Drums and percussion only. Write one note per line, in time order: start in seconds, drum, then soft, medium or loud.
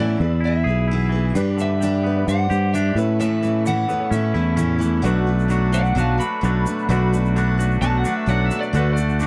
1.35 shaker medium
1.59 shaker medium
1.82 shaker medium
2.28 shaker medium
2.51 shaker medium
2.75 shaker medium
2.98 shaker medium
3.21 shaker medium
3.43 shaker medium
3.66 shaker medium
3.89 shaker medium
4.12 shaker loud
4.58 shaker loud
4.81 shaker medium
5.05 shaker medium
5.39 shaker soft
5.50 shaker medium
5.73 shaker medium
5.85 shaker soft
5.98 shaker medium
6.21 shaker loud
6.44 shaker medium
6.66 shaker loud
6.79 shaker soft
6.90 shaker medium
7.14 shaker loud
7.25 shaker soft
7.37 shaker medium
7.60 shaker loud
7.71 shaker soft
7.82 shaker medium
8.05 shaker loud
8.28 shaker medium
8.51 shaker medium
8.63 shaker soft
8.74 shaker medium
8.97 shaker medium
9.09 shaker soft
9.20 shaker medium